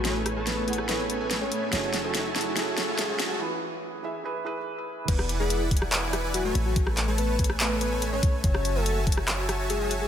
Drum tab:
CC |--------------------------------|--------------------------------|--------------------------------|x-------------------------------|
HH |x---x---x---xx--x---x---x---x---|x---x---x---xx--x---x---x---x---|--------------------------------|x---x---x---xx--x---x---x---x---|
CP |--------------------------------|--------------------------------|--------------------------------|----------------x---------------|
SD |o---r---o-----r-o-------o-------|o---o---o---o---o---o---o---o---|--------------------------------|--r-----------r-----r-----------|
BD |--------------------------------|--------------------------------|--------------------------------|o-----------o-------------------|

CC |--------------------------------|--------------------------------|
HH |x---x---x---xx--x---x---x---x---|x---x---x---xx--x---x---x---x---|
CP |----x-----------x---------------|----------------x---------------|
SD |--r-----------r-----------------|--r-----------r-----r-----------|
BD |o-----------o---------------o---|o-----------o-------------------|